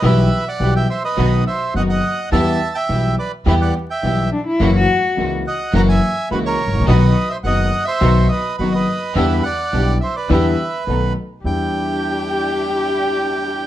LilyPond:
<<
  \new Staff \with { instrumentName = "Bandoneon" } { \time 4/4 \key e \minor \tempo 4 = 105 << { e''8. fis''8 g''16 e''16 dis''8. e''8 fis''16 fis''8. | a''8. g''8. d''8 e''16 fis''8 g''8. r8 | r4. fis''8 ais''16 gis''8. b'16 cis''8. | dis''8. e''16 fis''8. e''8. dis''8 b'16 dis''8. |
e''8 fis''4 e''16 d''16 e''4 r4 | g''1 | } \\ { b'8. d''8 e''16 c''16 b'8. c''8 dis''16 dis''8. | e''8. e''8. b'8 b'16 d''8 e''8. r8 | r4. dis''8 fis''16 e''8. fis'16 ais'8. | b'8. c''16 dis''8. c''8. b'8 fis'16 b'8. |
b'8 d''4 c''16 b'16 b'4. r8 | r1 | } >> }
  \new Staff \with { instrumentName = "Cello" } { \time 4/4 \key e \minor r1 | r2. r8 d'16 e'16~ | e'16 fis'4 r2 r8. | r1 |
r1 | g'1 | }
  \new Staff \with { instrumentName = "String section" } { \time 4/4 \key e \minor <b e' g'>8 r8 <b e' g'>8 r8 <b dis' fis'>8 r8 <b dis' fis'>8 r8 | <b e' g'>8 r8 <b e' g'>8 r8 <b e' g'>8 r8 <b e' g'>8 r8 | <ais e' fis'>8 r8 <ais e' fis'>8 r8 <ais e' fis'>8 r8 <ais e' fis'>8 r8 | <b dis' fis'>8 r8 <b dis' fis'>8 r8 <b dis' fis'>8 r8 <b dis' fis'>8 r8 |
<d' e' g'>8 r8 <d' e' g'>8 r8 <d' e' g'>8 r8 <b dis' a'>8 r8 | <d' e' g'>1 | }
  \new Staff \with { instrumentName = "Grand piano" } { \clef bass \time 4/4 \key e \minor <b,, b, e g b g'>8 r8 <b,, b, e g b g'>8 r8 <b,, b, dis fis b fis'>8 r8 <fis,, fis, dis fis b fis'>8 r8 | <e, e g b g'>8 r8 <b,, b, e g b g'>8 r8 <e, e g b g'>8 r8 <b,, b, e g b g'>8 r8 | <fis, e fis ais cis' fis'>8 r8 <cis, cis e ais cis' fis'>8 r8 <fis, e fis ais cis' fis'>8 r8 <cis, cis e ais cis' fis'>8 r32 gis,,32 a,,32 ais,,32 | <b,, b, dis fis b fis'>8 r8 <fis,, fis, dis fis b fis'>8 r8 <b,, b, dis fis b fis'>8 r8 <fis,, fis, dis fis b fis'>8 r8 |
<e, d e g b e'>8 r8 <b,, b, d g b e'>8 r8 <e, d e g b e'>8 r8 <b,, b, dis a b fis'>8 r8 | <e, g d' e'>1 | }
  \new Staff \with { instrumentName = "Upright bass" } { \clef bass \time 4/4 \key e \minor b,,16. r8 r32 b,,16. r8 r32 b,,16. r8 r32 fis,,16. r8 r32 | e,16. r8 r32 b,,16. r8 r32 e,16. r8 r32 b,,16. r8 r32 | fis,,16. r8 r32 cis,16. r8 r32 fis,,16. r8 r32 cis,16. r16 gis,,32 a,,32 ais,,32 | b,,16. r8 r32 fis,,16. r8 r32 b,,16. r8 r32 fis,,16. r8 r32 |
e,16. r8 r32 b,,16. r8 r32 e,16. r8 r32 b,,16. r8 r32 | e,8 r2. r8 | }
>>